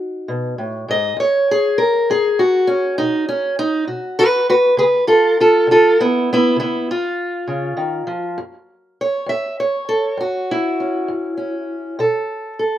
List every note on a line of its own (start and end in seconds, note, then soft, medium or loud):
0.00 1.15 D#4 medium
0.28 0.58 B2 medium
0.58 0.88 A2 medium
0.88 1.16 G#2 medium
0.88 1.19 D#5 loud
1.17 1.71 F#2 medium
1.17 1.49 C#5 loud
1.51 1.80 G#4 loud
1.78 2.08 A#4 loud
2.10 2.63 F#2 medium
2.10 2.39 G#4 loud
2.39 2.69 F#4 loud
2.67 2.98 C#4 loud
2.98 3.53 B2 medium
2.98 3.28 D#4 loud
3.29 3.58 C#4 loud
3.59 3.88 D#4 loud
3.87 4.42 B2 medium
3.87 4.18 F#4 soft
4.19 4.23 F#4 loud
4.19 4.48 B4 loud
4.50 4.53 F#4 loud
4.50 4.78 B4 loud
4.77 5.31 C#3 medium
4.77 4.83 G#4 medium
4.77 5.08 B4 loud
5.07 5.38 F4 medium
5.07 5.38 A4 loud
5.40 5.69 F4 medium
5.40 5.69 A4 loud
5.67 6.21 C#3 medium
5.71 5.99 F4 loud
5.71 6.00 A4 loud
6.01 6.29 B3 medium
6.01 6.29 E4 medium
6.33 6.58 B3 medium
6.33 6.58 E4 loud
6.56 7.11 C#3 medium
6.56 6.89 B3 medium
6.56 6.88 E4 medium
6.91 8.39 F4 loud
7.47 7.76 C#3 medium
7.77 8.06 D#3 medium
8.07 8.37 F3 medium
8.38 8.92 F#2 medium
9.01 9.29 C#5 medium
9.26 9.81 F#2 medium
9.26 9.58 E5 loud
9.60 10.19 C#5 medium
9.89 10.18 A4 medium
10.17 10.72 F#2 medium
10.17 11.09 F#4 medium
10.51 12.00 E4 medium
10.80 11.36 C#4 soft
11.08 11.62 F#2 medium
11.37 11.98 C#4 soft
11.99 12.53 B2 medium
11.99 12.58 A4 medium
12.59 12.78 A4 medium